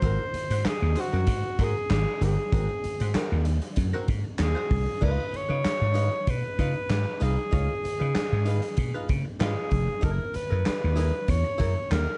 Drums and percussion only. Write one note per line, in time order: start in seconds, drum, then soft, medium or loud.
0.02 kick loud
0.02 closed hi-hat medium
0.34 closed hi-hat medium
0.50 closed hi-hat medium
0.65 snare loud
0.65 clap medium
0.65 closed hi-hat medium
0.95 closed hi-hat medium
1.27 kick medium
1.27 closed hi-hat medium
1.59 kick loud
1.59 closed hi-hat medium
1.90 snare loud
1.90 clap loud
1.90 closed hi-hat medium
2.22 closed hi-hat medium
2.52 kick loud
2.52 closed hi-hat medium
2.84 closed hi-hat medium
3.00 closed hi-hat medium
3.14 snare loud
3.14 clap medium
3.14 closed hi-hat medium
3.45 closed hi-hat medium
3.62 closed hi-hat medium
3.76 kick medium
3.76 closed hi-hat medium
4.08 kick loud
4.08 closed hi-hat medium
4.38 snare loud
4.38 clap loud
4.38 closed hi-hat medium
4.71 kick medium
4.71 open hi-hat medium
5.02 kick loud
5.02 crash medium
5.34 closed hi-hat medium
5.65 snare loud
5.65 clap medium
5.65 closed hi-hat medium
5.95 closed hi-hat medium
6.27 kick medium
6.27 closed hi-hat medium
6.59 kick medium
6.59 closed hi-hat medium
6.89 snare loud
6.89 clap loud
6.89 closed hi-hat medium
7.21 closed hi-hat medium
7.52 kick loud
7.52 closed hi-hat medium
7.85 closed hi-hat medium
8.15 snare loud
8.15 clap medium
8.15 closed hi-hat medium
8.46 closed hi-hat medium
8.62 closed hi-hat medium
8.77 kick medium
8.77 closed hi-hat medium
9.09 kick loud
9.09 closed hi-hat medium
9.40 snare loud
9.40 clap loud
9.40 closed hi-hat medium
9.71 kick medium
9.71 closed hi-hat medium
10.02 kick loud
10.02 closed hi-hat medium
10.34 closed hi-hat medium
10.65 snare loud
10.65 clap medium
10.65 closed hi-hat medium
10.97 closed hi-hat medium
11.28 kick medium
11.28 closed hi-hat medium
11.60 kick loud
11.60 closed hi-hat loud
11.91 snare loud
11.91 clap loud
11.91 closed hi-hat medium